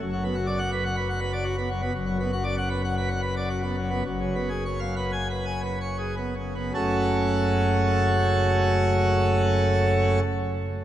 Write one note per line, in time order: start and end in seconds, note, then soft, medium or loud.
0.00 1.90 F#1 loud
0.00 1.91 F#2 loud
0.13 0.23 F#3 medium
0.24 0.35 B3 medium
0.35 0.46 F#4 medium
0.47 0.59 D5 medium
0.59 0.70 F#5 loud
0.72 0.83 B4 medium
0.85 0.96 F#5 medium
0.96 1.08 B4 loud
1.08 1.20 F#5 loud
1.20 1.31 B4 medium
1.33 1.44 D5 medium
1.44 1.55 F#4 medium
1.58 1.69 B3 loud
1.70 1.81 F#3 medium
1.82 1.92 B3 medium
1.94 4.02 F#1 loud
1.94 4.02 F#2 loud
2.06 2.17 F#3 medium
2.20 2.31 B3 loud
2.32 2.43 F#4 medium
2.44 2.56 D5 medium
2.57 2.69 F#5 loud
2.70 2.82 B4 medium
2.84 2.95 F#5 medium
2.97 3.09 B4 loud
3.09 3.21 F#5 loud
3.22 3.34 B4 loud
3.37 3.49 D5 medium
3.49 3.62 F#4 medium
3.63 3.76 B3 medium
3.77 3.90 F#3 medium
3.90 4.03 B3 medium
4.04 6.71 F#1 loud
4.04 6.71 F#2 loud
4.20 4.34 C#3 medium
4.35 4.49 B3 medium
4.49 4.64 G#4 medium
4.65 4.79 C#5 medium
4.80 4.94 F5 medium
4.96 5.11 B4 medium
5.12 5.27 G#5 loud
5.30 5.45 B4 medium
5.45 5.61 G#5 medium
5.62 5.78 B4 medium
5.81 5.97 C#5 medium
5.98 6.15 G#4 medium
6.17 6.34 B3 medium
6.35 6.53 C#3 medium
6.55 6.72 B3 medium
6.74 10.19 F#1 medium
6.74 10.19 F#2 medium
6.74 10.20 C#3 medium
6.74 10.19 A3 medium
6.74 10.19 C#4 medium
6.74 10.19 F#4 medium
6.74 10.20 A4 medium